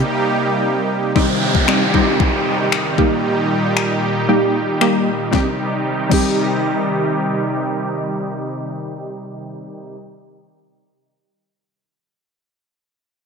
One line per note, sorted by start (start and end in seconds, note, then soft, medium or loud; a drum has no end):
0.00 1.12 C3 medium
0.00 1.14 G3 medium
0.00 1.12 A#3 medium
0.00 1.14 D#4 medium
0.00 1.14 G4 medium
1.15 2.97 C3 medium
1.15 5.29 D#3 medium
1.15 1.45 G3 medium
1.15 5.29 G3 medium
1.15 1.45 C4 medium
1.15 5.29 D#4 medium
1.15 1.45 D#4 medium
1.15 2.97 G4 medium
1.15 1.45 G4 loud
1.15 kick loud
1.15 downlifter medium
1.55 kick medium
1.68 1.82 G3 medium
1.68 1.82 C4 medium
1.68 1.82 D#4 medium
1.68 1.83 G4 medium
1.68 finger snap loud
1.94 2.52 G3 loud
1.94 2.52 C4 medium
1.94 2.52 D#4 medium
1.94 2.52 G4 loud
1.94 kick medium
2.20 kick loud
2.72 finger snap loud
2.98 5.31 A#2 medium
2.98 3.82 G3 medium
2.98 3.82 A#3 medium
2.98 3.82 D#4 medium
2.98 5.31 G4 medium
2.98 3.82 G4 loud
2.98 kick medium
3.77 finger snap loud
4.29 4.58 G3 medium
4.29 4.58 A#3 medium
4.29 4.58 D#4 medium
4.29 4.58 G4 medium
4.81 5.10 G3 medium
4.81 5.10 A#3 medium
4.81 5.10 D#4 medium
4.81 5.10 G4 medium
4.81 finger snap loud
5.31 9.96 C3 medium
5.31 9.96 D#3 medium
5.31 5.47 G3 medium
5.31 9.96 G3 medium
5.31 5.47 C4 medium
5.31 9.96 D#4 medium
5.31 5.48 D#4 medium
5.31 9.96 G4 medium
5.31 5.49 G4 medium
5.31 kick loud
5.31 snare medium
6.09 10.72 G3 medium
6.09 10.73 C4 medium
6.09 10.75 D#4 medium
6.09 kick loud
6.09 crash medium
6.13 10.76 G4 medium